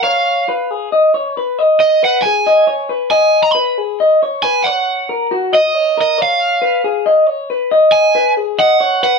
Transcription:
<<
  \new Staff \with { instrumentName = "Overdriven electric guitar" } { \time 7/8 \key aes \dorian \tempo 4 = 137 f''2 r4. | r8 ees''8 ges''8 aes''2 | aes''8. bes''16 ces'''2 aes''8 | ges''4. r8 ees''4 ees''8 |
f''2~ f''8 r4 | r8 aes''4 r8 ges''4 ges''8 | }
  \new Staff \with { instrumentName = "Clean electric guitar" } { \time 7/8 \key aes \dorian des''4 ces''8 aes'8 ees''8 des''8 ces''8 | ees''4 ces''8 aes'8 ees''8 des''8 ces''8 | ees''4 ces''8 aes'8 ees''8 des''8 ces''8 | des''4 bes'8 ges'8 ees''8 des''8 bes'8 |
des''4 ces''8 aes'8 ees''8 des''8 ces''8 | ees''4 ces''8 aes'8 ees''8 des''8 ces''8 | }
>>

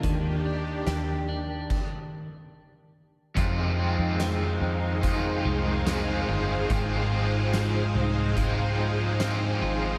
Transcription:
<<
  \new Staff \with { instrumentName = "String machine" } { \time 4/4 \key f \dorian \tempo 4 = 72 << { <bes d' g'>2 r2 | <aes' c'' f''>1~ | <aes' c'' f''>1 | } \\ { ees2 r2 | ees'1 | ees'1 | } >> }
  \new Staff \with { instrumentName = "Clean electric guitar" } { \time 4/4 \key f \dorian ees8 d'8 g'8 d'8 r2 | <f, f'>8 c'8 aes8 c'8 f'8 aes8 c'8 f'8 | <aes, f'>8 c'8 aes8 c'8 f'8 aes8 c'8 f'8 | }
  \new Staff \with { instrumentName = "Overdriven electric guitar" } { \clef bass \time 4/4 \key f \dorian r1 | <f, c ees aes c' f'>8 <ees aes c' f'>4. <ees aes c' f'>4 <ees aes c' f'>4 | <aes, ees f aes c' f'>8 <f aes c' f'>4. <f aes c' f'>4 <f aes c' f'>4 | }
  \new Staff \with { instrumentName = "Fingered electric bass" } { \clef bass \time 4/4 \key f \dorian ees,4 ees,4 r2 | f,8. f,8. f,8. r16 c,4 g,,8 | aes,,4. c,2 aes,,8 | }
  \new DrumStaff \with { instrumentName = "Drums" } \drummode { \time 4/4 <hh bd>4 <hh sn>4 <cymc bd>4 r4 | <hh bd>4 <hh sn tamb>4 <hh bd>4 <hh sn tamb>4 | <hh bd>4 <hh sn tamb>4 <hh bd>4 <hh sn tamb>4 | }
>>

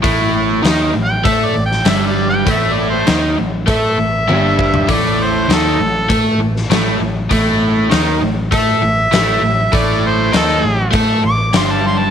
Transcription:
<<
  \new Staff \with { instrumentName = "Harmonica" } { \time 4/4 \key a \minor \tempo 4 = 99 r4 \tuplet 3/2 { r4 g''8 e''8 d''8 g''8 e''8 d''8 g''8 } | \tuplet 3/2 { e''8 d''8 c''8~ } c''16 r8. e''2 | d''8 c''8 a'4 r2 | r2 e''2 |
d''8 c''8 a'4 r8 d'''8 c'''16 a''16 c'''16 a''16 | }
  \new Staff \with { instrumentName = "Overdriven electric guitar" } { \clef bass \time 4/4 \key a \minor <a, a>4 <dis dis'>8 a,8 <a a'>8 a,8 <g, g>4 | <a, a>4 <dis dis'>8 a,8 <a a'>8 a,8 <g, g>4 | <a, a>4 <dis dis'>8 a,8 <a a'>8 a,8 <a, a>8 a,8 | <a, a>4 <dis dis'>8 a,8 <a a'>8 a,8 <a, a>8 a,8 |
<a, a>4 <dis dis'>8 a,8 <a a'>8 a,8 <g, g>4 | }
  \new Staff \with { instrumentName = "Fingered electric bass" } { \clef bass \time 4/4 \key a \minor a,,4 dis,8 a,,8 a,8 a,,8 g,,4 | a,,4 dis,8 a,,8 a,8 a,,8 g,,4 | a,,4 dis,8 a,,8 a,8 a,,8 a,,8 a,,8 | a,,4 dis,8 a,,8 a,8 a,,8 a,,8 a,,8 |
a,,4 dis,8 a,,8 a,8 a,,8 g,,4 | }
  \new DrumStaff \with { instrumentName = "Drums" } \drummode { \time 4/4 <hho bd>4 <hho sn>4 <hho bd>8. sn16 <hho sn>4 | <hho bd>4 <hho sn>4 <hho bd>4 tommh8 bd16 tomfh16 | <hho bd>4 <hho sn>4 <hho bd>8. sn16 <hho sn>4 | <hho bd>4 <hho sn>4 <hho bd>4 <hho sn>4 |
<hho bd>4 <hho sn>16 sn8. <hho bd>4 <hho sn>4 | }
>>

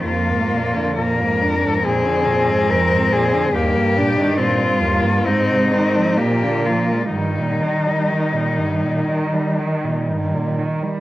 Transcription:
<<
  \new Staff \with { instrumentName = "Cello" } { \time 4/4 \key ees \major \tempo 4 = 65 f'4 bes'4 aes'4 bes'8 aes'8 | g'4 f'4 ees'4 g'8 f'8 | ees'2. r4 | }
  \new Staff \with { instrumentName = "Cello" } { \time 4/4 \key ees \major bes4 bes8 d'8 c'2 | bes8 d'8 c'8 bes8 c'8 c'8 bes4 | g2.~ g8 r8 | }
  \new Staff \with { instrumentName = "Cello" } { \clef bass \time 4/4 \key ees \major f,16 aes,16 bes,16 d16 bes,16 aes,16 f,16 aes,16 bes,16 d16 bes,16 aes,16 f,16 aes,16 bes,16 d16 | ees,16 g,16 bes,16 ees16 bes,16 g,16 ees,16 g,16 aes,16 c16 ees16 f16 bes,16 d16 f16 aes16 | g,16 bes,16 ees16 g16 ees16 bes,16 g,16 bes,16 ees16 g16 ees16 bes,16 g,16 bes,16 ees16 g16 | }
  \new Staff \with { instrumentName = "Cello" } { \clef bass \time 4/4 \key ees \major f,1 | g,2 aes,4 bes,4 | ees1 | }
>>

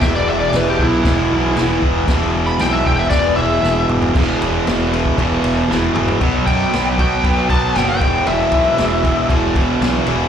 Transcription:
<<
  \new Staff \with { instrumentName = "Electric slide guitar" } { \time 4/4 \key b \dorian \tempo 4 = 117 e''16 d''16 e''16 d''16 b'16 g'16 e'2 r8 | r8. b''16 g''16 e''16 g''16 e''16 d''8 e''4 r8 | r1 | r8 g''4 g''4 a''8 g''16 g''8. |
e''2 r2 | }
  \new Staff \with { instrumentName = "Distorted electric guitar" } { \clef bass \time 4/4 \key b \dorian <e, b, e>8 <b, e>8 <e, b, e>8 <b, e>8 <e, b, e>8 <b, e>8 <e, b, e>4 | <e, b, e>8 <b, e>8 <e, b, e>8 <b, e>8 <e, b, e>8 <b, e>8 <e, b, e>4 | <e, b, e>8 <b, e>8 <e, b, e>8 <b, e>8 <e, b, e>4 <e, b, e>8 <b, e>8 | <b, fis b>8 <b, fis b>8 <b, fis b>8 <b, fis b>8 <b, fis b>8 <b, fis b>8 <b, fis b>8 <e, b, e>8 |
<e, b, e>8 <e, b, e>8 <e, b, e>8 <e, b, e>8 <e, b, e>8 <e, b, e>8 <e, b, e>8 <e, b, e>8 | }
  \new Staff \with { instrumentName = "Fingered electric bass" } { \clef bass \time 4/4 \key b \dorian e,,8 e,,8 e,,8 b,,8 e,,8 b,,8 e,,8 e,,8 | e,,4 b,,8 e,,8 e,,8 e,,8 e,,8 e,,8 | e,,8 e,,8 e,,4 e,,8 e,,8 e,,8 e,,8 | b,,8 fis,8 b,,4 b,,4 fis,,8 e,,8 |
e,,8 b,,8 e,,4 e,,4 b,,8 e,,8 | }
  \new DrumStaff \with { instrumentName = "Drums" } \drummode { \time 4/4 <cymc bd sn>4 <cymc sn>8 bd8 <cymc bd sn>4 <cymc sn>8 bd8 | <cymc bd sn>4 <cymc sn>8 bd8 <cymc bd sn>4 sn8 toml16 tomfh16 | <cymc bd>8 cymr8 <cymr sn>8 cymr16 bd16 <bd cymr>8 cymr8 sn8 toml16 tomfh16 | <bd cymr>8 <bd cymr>8 <cymr sn>8 <bd cymr>8 <bd cymr>8 <bd cymr>8 <cymr sn>8 <bd cymr>8 |
cymr8 <bd cymr>8 <cymr sn>8 <bd cymr>8 <bd cymr>8 <bd cymr>8 <cymr sn>8 cymr8 | }
>>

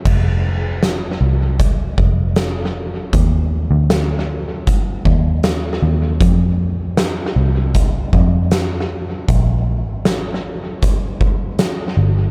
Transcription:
<<
  \new Staff \with { instrumentName = "Picked electric bass" } { \clef bass \time 4/4 \key f \dorian \tempo 4 = 78 f,,4. c,4 f,,4. | ees,8. d,4.~ d,16 ees,4 ees,8 | f,4. c,4 f,4. | bes,,8. aes,,4.~ aes,,16 r4 g,,8 | }
  \new DrumStaff \with { instrumentName = "Drums" } \drummode { \time 4/4 <cymc bd>4 <hh sn>4 <hh bd>8 bd8 <hh sn>4 | <hh bd>4 <hh sn>4 <hh bd>8 bd8 <hh sn>4 | <hh bd>4 <hh sn>4 <hh bd>8 bd8 <hh sn>4 | <hh bd>4 <hh sn>4 <hh bd>8 bd8 <hh sn>4 | }
>>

